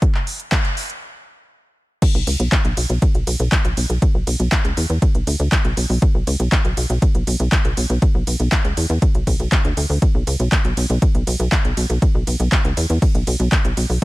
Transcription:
0.02 kick, closed hi-hat
0.15 clap
0.27 open hi-hat
0.40 closed hi-hat
0.52 kick, clap, closed hi-hat
0.65 closed hi-hat
0.77 open hi-hat
0.90 closed hi-hat
2.02 kick, closed hi-hat, crash, ride
2.15 B1
2.27 C#2, open hi-hat, ride
2.40 B1, closed hi-hat
2.52 kick, clap, closed hi-hat, ride
2.65 B1, closed hi-hat
2.77 B1, open hi-hat, ride
2.90 B1, closed hi-hat
3.02 kick, closed hi-hat, ride
3.15 B1, closed hi-hat
3.27 B1, open hi-hat, ride
3.40 B1, closed hi-hat
3.52 kick, clap, closed hi-hat, ride
3.65 B1, closed hi-hat
3.77 B1, open hi-hat, ride
3.90 B1, closed hi-hat
4.02 kick, closed hi-hat, ride
4.15 B1
4.27 B1, open hi-hat, ride
4.40 B1, closed hi-hat
4.52 kick, clap, closed hi-hat, ride
4.65 C#2, closed hi-hat
4.77 E2, open hi-hat, ride
4.90 E2, closed hi-hat
5.02 kick, closed hi-hat, ride
5.15 B1, closed hi-hat
5.27 D2, open hi-hat, ride
5.40 D2, closed hi-hat
5.52 kick, clap, closed hi-hat, ride
5.65 B1, closed hi-hat
5.77 B1, open hi-hat, ride
5.90 B1, open hi-hat
6.02 kick, closed hi-hat, ride
6.15 B1
6.27 C#2, open hi-hat, ride
6.40 B1, closed hi-hat
6.52 kick, clap, closed hi-hat, ride
6.65 B1, closed hi-hat
6.77 B1, open hi-hat, ride
6.90 B1, closed hi-hat
7.02 kick, closed hi-hat, ride
7.15 B1, closed hi-hat
7.27 B1, open hi-hat, ride
7.40 B1, closed hi-hat
7.52 kick, clap, closed hi-hat, ride
7.65 B1, closed hi-hat
7.77 B1, open hi-hat, ride
7.90 B1, closed hi-hat
8.02 kick, closed hi-hat, ride
8.15 B1
8.27 B1, open hi-hat, ride
8.40 B1, closed hi-hat
8.52 kick, clap, closed hi-hat, ride
8.65 C#2, closed hi-hat
8.77 E2, open hi-hat, ride
8.90 E2, closed hi-hat
9.02 kick, closed hi-hat, ride
9.15 B1, closed hi-hat
9.27 B1, kick, open hi-hat, ride
9.40 B1, closed hi-hat
9.52 kick, clap, closed hi-hat, ride
9.65 D2, closed hi-hat
9.77 D2, open hi-hat, ride
9.90 D2, open hi-hat
10.02 kick, closed hi-hat, ride
10.15 B1
10.27 C#2, open hi-hat, ride
10.40 B1, closed hi-hat
10.52 kick, clap, closed hi-hat, ride
10.65 B1, closed hi-hat
10.77 B1, open hi-hat, ride
10.90 B1, closed hi-hat
11.02 kick, closed hi-hat, ride
11.15 B1, closed hi-hat
11.27 B1, open hi-hat, ride
11.40 B1, closed hi-hat
11.52 kick, clap, closed hi-hat, ride
11.65 B1, closed hi-hat
11.77 B1, open hi-hat, ride
11.90 B1, closed hi-hat
12.02 kick, closed hi-hat, ride
12.15 B1
12.27 B1, open hi-hat, ride
12.40 B1, closed hi-hat
12.52 kick, clap, closed hi-hat, ride
12.65 C#2, closed hi-hat
12.77 E2, open hi-hat, ride
12.90 E2, closed hi-hat
13.02 kick, closed hi-hat, ride
13.15 B1, closed hi-hat
13.27 B1, open hi-hat, ride
13.40 B1, closed hi-hat
13.52 kick, clap, closed hi-hat, ride
13.65 B1, closed hi-hat
13.77 B1, open hi-hat, ride
13.90 B1, open hi-hat

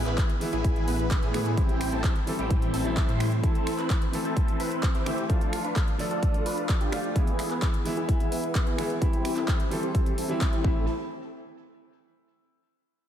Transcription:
Already playing: E3 G#3 B3 E4
0.06 A1 B3 E4 B4, clap, closed hi-hat
0.18 kick, clap, closed hi-hat
0.30 closed hi-hat
0.40 E3 G#3 B3 E4, open hi-hat
0.53 A1 B3 E4 G#4, closed hi-hat
0.64 kick, closed hi-hat
0.76 closed hi-hat
0.88 A1 B3 E4 B4, open hi-hat
0.99 closed hi-hat
1.11 kick, clap, closed hi-hat
1.23 A2 B3 E4 G#4, closed hi-hat
1.34 E3 G#3 B3 E4, finger snap, open hi-hat
1.46 closed hi-hat
1.56 A1 E3 G3 C4 E4 G4, kick, closed hi-hat
1.69 closed hi-hat
1.81 finger snap, open hi-hat
1.92 A1 C4 E4 A4, closed hi-hat
2.04 kick, clap, closed hi-hat
2.16 closed hi-hat
2.26 E3 G3 C4 A4, open hi-hat
2.39 A1 C4 E4 G4, closed hi-hat
2.50 kick, closed hi-hat
2.62 closed hi-hat
2.74 A1 C4 E4 A4, open hi-hat
2.84 E3 G3 C4 E4, closed hi-hat
2.97 kick, clap, closed hi-hat
3.09 A2 C4 E4 C5, closed hi-hat
3.20 finger snap, open hi-hat
3.32 closed hi-hat
3.42 E3 A3 C4 E4 A4, kick, closed hi-hat
3.55 closed hi-hat
3.67 finger snap, open hi-hat
3.78 C4 E4 B4, clap, closed hi-hat
3.90 kick, clap, closed hi-hat
4.02 closed hi-hat
4.12 E3 A3 C4 A4, open hi-hat
4.25 C4 E4 A4, closed hi-hat
4.37 kick, closed hi-hat
4.48 closed hi-hat
4.60 C4 E4 B4, open hi-hat
4.72 closed hi-hat
4.83 kick, clap, closed hi-hat
4.95 C4 E4 G4, closed hi-hat
5.06 E3 A3 C4 E4, finger snap, open hi-hat
5.18 closed hi-hat
5.29 F3 A3 D4 F4 A4, kick, closed hi-hat
5.41 closed hi-hat
5.53 finger snap, open hi-hat
5.65 D4 F4 B4, closed hi-hat
5.76 kick, clap, closed hi-hat
5.88 closed hi-hat
5.98 F3 A3 D4 A4, open hi-hat
6.11 D4 F4 A4, closed hi-hat
6.23 kick, closed hi-hat
6.34 closed hi-hat
6.46 D4 F4 B4, open hi-hat
6.58 closed hi-hat
6.69 kick, clap, closed hi-hat
6.81 D4 F4 G4, closed hi-hat
6.92 F3 A3 D4 F4, finger snap, open hi-hat
7.04 closed hi-hat
7.15 E3 G#3 B3 E4 G#4, kick, closed hi-hat
7.27 closed hi-hat
7.39 finger snap, open hi-hat
7.51 B3 E4 B4, clap, closed hi-hat
7.62 kick, clap, closed hi-hat
7.74 closed hi-hat
7.84 E3 G#3 B3 E4, open hi-hat
7.97 B3 E4 G#4, closed hi-hat
8.09 kick, closed hi-hat
8.20 closed hi-hat
8.32 B3 E4 B4, open hi-hat
8.44 closed hi-hat
8.55 kick, clap, closed hi-hat
8.67 B3 E4 G#4, closed hi-hat
8.78 E3 G#3 B3 E4, finger snap, open hi-hat
8.90 closed hi-hat
9.01 E3 G3 C4 E4 G4, kick, closed hi-hat
9.13 closed hi-hat
9.25 finger snap, open hi-hat
9.37 C4 E4 A4, clap, closed hi-hat
9.48 kick, clap, closed hi-hat
9.60 closed hi-hat
9.70 E3 G3 C4 A4, open hi-hat
9.83 C4 E4 G4, closed hi-hat
9.95 kick, closed hi-hat
10.06 closed hi-hat
10.18 C4 E4 A4, open hi-hat
10.28 E3 G3 C4 E4, closed hi-hat
10.41 kick, clap, closed hi-hat
10.53 C4 E4 G4, closed hi-hat
10.63 A1 E3 A3 C4 E4 A4, kick

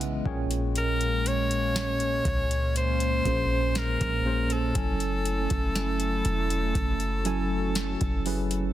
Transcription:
Already playing: B1 C#3 E3 G#3 B3 C#4 E4 D#5 E5 F#5
0.01 closed hi-hat
0.25 A#1 A#2 A#3 C#4 G#4 C#5 G5, kick
0.51 closed hi-hat
0.76 A#4, closed hi-hat
1.01 closed hi-hat
1.26 C#5, closed hi-hat
1.51 closed hi-hat
1.76 snare, closed hi-hat
2.00 closed hi-hat
2.25 C#2, kick, closed hi-hat
2.51 closed hi-hat
2.76 C5, closed hi-hat
3.00 closed hi-hat
3.25 A#1 A#2 A#3 C#4 G#4 C5, kick, closed hi-hat
3.75 A#4, snare, closed hi-hat
4.01 A#1, kick, closed hi-hat
4.25 A#2 A#3 C#4 G#4 C5
4.50 A4, closed hi-hat
4.75 F#1 F#3 A3 C#4 E4 A4 G#5, kick, closed hi-hat
5.00 closed hi-hat
5.25 closed hi-hat
5.50 F#1, kick, closed hi-hat
5.75 snare, closed hi-hat
6.00 closed hi-hat
6.25 E1, closed hi-hat
6.50 closed hi-hat
6.75 F#1 F#4, kick, closed hi-hat
7.00 closed hi-hat
7.25 F#3 C#4 E4 A4 G#5, closed hi-hat
7.75 snare, closed hi-hat
8.01 F#1, kick, closed hi-hat
8.26 F#3 C#4 E4 G#4 B4, open hi-hat
8.51 closed hi-hat

